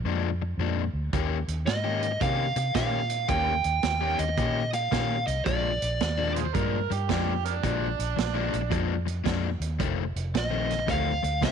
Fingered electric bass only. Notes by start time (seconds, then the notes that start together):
0.04 F2
0.58 F2
0.93 D2
1.13 D#2
1.48 D#2
1.67 G#2
2.21 C3
2.56 C3
2.75 A#2
3.29 D#2
3.65 D#2
3.83 D#2
4.19 D#2
4.38 A#2
4.92 A#2
5.27 C2
5.46 A#1
5.82 A#1
6.01 D#2
6.55 G2
6.91 G2
7.09 F2
7.64 A#1
7.99 A#1
8.18 A#1
8.53 A#1
8.72 F2
9.26 F2
9.60 D#2
9.80 F1
10.16 F1
10.34 A#1
10.88 D2
11.23 D2
11.42 C2